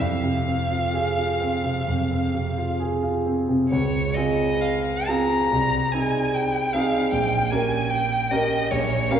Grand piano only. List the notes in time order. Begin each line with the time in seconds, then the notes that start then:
0.00 F2
0.23 C3
0.48 C4
0.71 F4
0.94 G#4
1.18 F4
1.41 C4
1.64 C3
1.88 F2
2.11 C4
2.35 C3
2.58 F4
2.80 G#4
3.03 F4
3.26 C4
3.48 C3
3.71 C#2
4.16 C4 F4 G#4
5.08 C4 F4 G#4
5.52 C2
5.94 C4 D#4 G#4
6.74 C4 D#4 G#4
7.12 A#1
7.52 C#4 G4 A#4
8.31 C#4 G4 A#4
8.71 A#1
9.11 C#4 G4 A#4